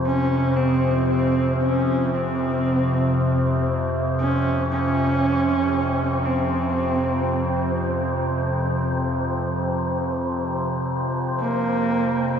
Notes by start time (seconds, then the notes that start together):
Already playing: F2 C3 C5
0.06 C#4
0.56 C4
1.09 C4
1.63 C#4
2.15 C4
4.20 C#4
4.71 C#4
6.25 C4
11.41 A#3